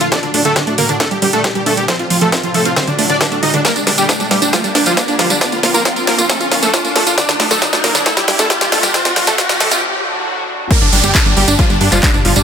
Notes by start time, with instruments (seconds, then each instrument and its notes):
Already playing: analog synth pad D3 F3 F4, riser
0.01 analog synth bass A#1, supersaw synth F4, synth arpeggio sound F4, closed hi-hat
0.12 analog synth pad A2 F#3 D4 F#4, synth arpeggio sound D3, supersaw synth D4 D5, kick, snare, closed hi-hat
0.23 analog synth bass D2, synth arpeggio sound D3, supersaw synth D4, closed hi-hat
0.34 analog synth bass D2, synth arpeggio sound A3, supersaw synth D4, open hi-hat
0.45 analog synth bass D2, synth arpeggio sound D3, supersaw synth A3 A4, closed hi-hat
0.56 synth arpeggio sound D3, supersaw synth D4, kick, snare, closed hi-hat
0.67 analog synth bass D2, synth arpeggio sound A3, supersaw synth D4, closed hi-hat
0.78 analog synth bass D2, synth arpeggio sound D3, supersaw synth A#3 A#4, open hi-hat
0.89 analog synth bass D2, synth arpeggio sound D3, supersaw synth D4, closed hi-hat
1.00 analog synth pad A#2 G3 D4 G4, supersaw synth A3 A4, synth arpeggio sound D4, kick, snare, closed hi-hat
1.11 analog synth bass G1, synth arpeggio sound G3, supersaw synth G4, closed hi-hat
1.22 analog synth bass G2, synth arpeggio sound G3, supersaw synth G4, open hi-hat
1.33 analog synth bass G1, supersaw synth A3 A4, synth arpeggio sound D4, closed hi-hat
1.44 synth arpeggio sound G3, supersaw synth G4, kick, snare, closed hi-hat
1.55 analog synth bass G1, synth arpeggio sound G3, supersaw synth G4, closed hi-hat
1.66 analog synth bass G1, supersaw synth A3 A4, synth arpeggio sound D4, open hi-hat
1.77 analog synth bass G1, synth arpeggio sound G3, supersaw synth G4, closed hi-hat
1.88 analog synth pad A2 C3 F3 C4 F4, synth arpeggio sound F3, supersaw synth C4 C5, kick, snare, closed hi-hat
1.99 analog synth bass F1, synth arpeggio sound C4, supersaw synth F4, closed hi-hat
2.10 analog synth bass F1, synth arpeggio sound F3, supersaw synth F4, open hi-hat
2.21 analog synth bass F1, synth arpeggio sound F3, supersaw synth A3 A4, closed hi-hat
2.32 synth arpeggio sound C4, supersaw synth F4, kick, snare, closed hi-hat
2.43 analog synth bass F1, synth arpeggio sound F3, supersaw synth F4, closed hi-hat
2.54 analog synth bass F1, synth arpeggio sound F3, supersaw synth A3 A4, open hi-hat
2.65 analog synth bass F1, synth arpeggio sound C4, supersaw synth F4, closed hi-hat
2.76 synth arpeggio sound D3, analog synth pad D3 F#3 D4 F#4, supersaw synth C4 C5, kick, snare, closed hi-hat
2.88 analog synth bass D2, synth arpeggio sound D3, supersaw synth D4, closed hi-hat
2.98 analog synth bass D1, synth arpeggio sound A3, supersaw synth D4, open hi-hat
3.10 analog synth bass D2, synth arpeggio sound D3, supersaw synth D4 D5, closed hi-hat
3.21 synth arpeggio sound D3, supersaw synth D4, kick, snare, closed hi-hat
3.32 analog synth bass D1, synth arpeggio sound A3, supersaw synth D4, closed hi-hat
3.43 analog synth bass D2, synth arpeggio sound D3, supersaw synth D#4 D#5, open hi-hat
3.54 analog synth bass D2, synth arpeggio sound D3, supersaw synth D4, closed hi-hat
3.65 analog synth pad A#2 G3 G4, synth arpeggio sound G3, supersaw synth A#3 A#4, kick, snare, closed hi-hat, tambourine
3.76 analog synth bass G1, synth arpeggio sound D4, supersaw synth D4, closed hi-hat, tambourine
3.87 analog synth bass G1, synth arpeggio sound G3, supersaw synth D4, snare, open hi-hat
3.98 analog synth bass G1, supersaw synth G3 G4, synth arpeggio sound G3, closed hi-hat, tambourine
4.09 supersaw synth D4, synth arpeggio sound D4, kick, snare, closed hi-hat, tambourine
4.20 analog synth bass G1, synth arpeggio sound G3, supersaw synth D4, closed hi-hat, tambourine
4.31 analog synth bass G1, supersaw synth G3 G4, synth arpeggio sound G3, snare, open hi-hat
4.42 analog synth bass G1, supersaw synth D4, synth arpeggio sound D4, closed hi-hat, tambourine
4.53 supersaw synth F3 F4, synth arpeggio sound G3, kick, snare, closed hi-hat, tambourine
4.64 analog synth bass G1, synth arpeggio sound G3, supersaw synth D4, closed hi-hat, tambourine
4.75 analog synth bass G2, synth arpeggio sound D4, supersaw synth D4, snare, open hi-hat
4.86 analog synth bass G1, supersaw synth F3 F4, synth arpeggio sound G3, closed hi-hat, tambourine
4.97 synth arpeggio sound G3, supersaw synth D4, kick, snare, closed hi-hat, tambourine
5.08 analog synth bass G1, synth arpeggio sound D4, supersaw synth D4, closed hi-hat, tambourine
5.19 analog synth bass G1, supersaw synth F3 F4, synth arpeggio sound G3, snare, open hi-hat
5.30 analog synth bass G1, synth arpeggio sound G3, supersaw synth D4, closed hi-hat, tambourine
5.41 analog synth pad F3 F4, supersaw synth D4 D5, synth arpeggio sound F4, kick, snare, closed hi-hat
5.52 analog synth bass A#1, synth arpeggio sound A#3, supersaw synth F4, closed hi-hat, tambourine
5.63 analog synth bass A#1, synth arpeggio sound A#3, supersaw synth F4, snare, open hi-hat
5.74 analog synth bass A#1, supersaw synth A#3 A#4, synth arpeggio sound F4, closed hi-hat, tambourine
5.85 synth arpeggio sound A#3, supersaw synth F4, kick, snare, closed hi-hat, tambourine
5.96 analog synth bass A#1, synth arpeggio sound A#3, supersaw synth F4, closed hi-hat, tambourine
6.07 analog synth bass A#1, supersaw synth A#3 A#4, synth arpeggio sound F4, snare, open hi-hat
6.18 analog synth bass A#1, synth arpeggio sound A#3, supersaw synth F4, closed hi-hat, tambourine
6.29 supersaw synth A3 A4, synth arpeggio sound A#3, kick, snare, closed hi-hat, tambourine
6.40 analog synth bass A#1, synth arpeggio sound F4, supersaw synth F4, closed hi-hat, tambourine
6.51 analog synth bass A#2, synth arpeggio sound A#3, supersaw synth F4, snare, open hi-hat
6.62 analog synth bass A#1, supersaw synth A3 A4, synth arpeggio sound A#3, closed hi-hat, tambourine
6.73 synth arpeggio sound F4, supersaw synth F4, kick, snare, closed hi-hat, tambourine
6.85 analog synth bass A#1, synth arpeggio sound A#3, supersaw synth F4, closed hi-hat, tambourine
6.96 analog synth bass A#1, supersaw synth A3 A4, synth arpeggio sound A#3, snare, open hi-hat
7.07 analog synth bass A#1, supersaw synth F4, synth arpeggio sound F4, closed hi-hat, tambourine
7.18 analog synth pad A2 F#3 D4 F#4, synth arpeggio sound D3, supersaw synth D4 D5, kick, snare, closed hi-hat, tambourine
7.29 analog synth bass D2, synth arpeggio sound D3, supersaw synth D4, snare, closed hi-hat, tambourine
7.40 analog synth bass D2, synth arpeggio sound A3, supersaw synth D4, snare, open hi-hat
7.51 analog synth bass D2, synth arpeggio sound D3, supersaw synth A3 A4, snare, closed hi-hat, tambourine
7.62 synth arpeggio sound D3, supersaw synth D4, kick, snare, closed hi-hat, tambourine
7.73 analog synth bass D2, synth arpeggio sound A3, supersaw synth D4, snare, closed hi-hat, tambourine
7.84 analog synth bass D2, synth arpeggio sound D3, supersaw synth A#3 A#4, snare, open hi-hat
7.95 analog synth bass D2, synth arpeggio sound D3, supersaw synth D4, snare, closed hi-hat, tambourine
8.06 analog synth pad A#2 G3 D4 G4, supersaw synth A3 A4, synth arpeggio sound D4, kick, snare, closed hi-hat, tambourine
8.17 analog synth bass G1, synth arpeggio sound G3, supersaw synth G4, snare, closed hi-hat, tambourine
8.28 analog synth bass G2, synth arpeggio sound G3, supersaw synth G4, snare, open hi-hat
8.39 analog synth bass G1, supersaw synth A3 A4, synth arpeggio sound D4, snare, closed hi-hat, tambourine
8.50 synth arpeggio sound G3, supersaw synth G4, kick, snare, closed hi-hat, tambourine
8.61 analog synth bass G1, synth arpeggio sound G3, supersaw synth G4, snare, closed hi-hat, tambourine
8.72 analog synth bass G1, supersaw synth A3 A4, synth arpeggio sound D4, snare, open hi-hat
8.83 analog synth bass G1, synth arpeggio sound G3, supersaw synth G4, snare, closed hi-hat, tambourine
8.94 analog synth pad A2 C3 F3 C4 F4, synth arpeggio sound F3, supersaw synth C4 C5, kick, snare, closed hi-hat, tambourine
9.05 analog synth bass F1, synth arpeggio sound C4, supersaw synth F4, snare, closed hi-hat, tambourine
9.16 analog synth bass F1, synth arpeggio sound F3, supersaw synth F4, snare, open hi-hat
9.27 analog synth bass F1, synth arpeggio sound F3, supersaw synth A3 A4, snare, closed hi-hat, tambourine
9.38 synth arpeggio sound C4, supersaw synth F4, kick, snare, closed hi-hat, tambourine
9.49 analog synth bass F1, synth arpeggio sound F3, supersaw synth F4, snare, closed hi-hat, tambourine
9.60 analog synth bass F1, synth arpeggio sound F3, supersaw synth A3 A4, snare, open hi-hat
9.71 analog synth bass F1, synth arpeggio sound C4, supersaw synth F4, snare, closed hi-hat, tambourine
9.82 analog synth pad D3 F#3 D4 F#4
10.71 analog synth pad A#2 D3 G3 D4 G4, synth arpeggio sound G3, supersaw synth A#3 A#4, kick, closed hi-hat, crash, tambourine, downlifter
10.82 analog synth bass G1, synth arpeggio sound D4, supersaw synth D4, closed hi-hat, tambourine
10.93 analog synth bass G1, synth arpeggio sound G3, supersaw synth D4, open hi-hat
11.04 analog synth bass G1, synth arpeggio sound G3, supersaw synth G3 G4, closed hi-hat, tambourine
11.15 synth arpeggio sound D4, supersaw synth D4, kick, clap, closed hi-hat
11.26 analog synth bass G1, synth arpeggio sound G3, supersaw synth D4, closed hi-hat, tambourine
11.37 analog synth bass G1, supersaw synth G3 G4, synth arpeggio sound G3, open hi-hat
11.48 analog synth bass G1, synth arpeggio sound D4, supersaw synth D4, closed hi-hat, tambourine
11.59 supersaw synth F3 F4, synth arpeggio sound G3, kick, closed hi-hat, tambourine
11.70 analog synth bass G1, synth arpeggio sound G3, supersaw synth D4, closed hi-hat, tambourine
11.81 analog synth bass G2, synth arpeggio sound D4, supersaw synth D4, open hi-hat
11.92 analog synth bass G1, supersaw synth F3 F4, synth arpeggio sound G3, clap, closed hi-hat, tambourine
12.03 synth arpeggio sound G3, supersaw synth D4, kick, clap, closed hi-hat, tambourine
12.14 analog synth bass G1, synth arpeggio sound D4, supersaw synth D4, closed hi-hat, tambourine
12.25 analog synth bass G1, supersaw synth F3 F4, synth arpeggio sound G3, open hi-hat
12.36 analog synth bass G1, synth arpeggio sound G3, supersaw synth D4, closed hi-hat, tambourine